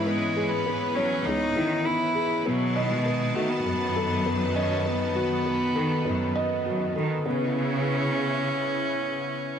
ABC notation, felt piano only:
X:1
M:4/4
L:1/8
Q:1/4=100
K:C#m
V:1 name="Felt piano"
B, G B, c B, E B, G | B, d B, F B, A B, d | B, F B, A B, d F A | B, z6 z |]